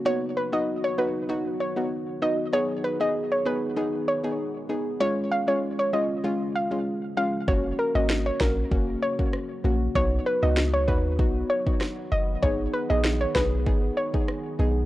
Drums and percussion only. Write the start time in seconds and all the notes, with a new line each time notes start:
7.48 kick
8.10 snare
8.41 kick, snare
8.72 kick
9.19 kick
9.33 cross-stick
9.95 kick
10.57 snare
10.88 kick
11.19 kick
11.67 kick
11.81 cross-stick, snare
12.43 kick
13.04 snare
13.36 kick, snare
13.66 kick
14.14 kick
14.28 cross-stick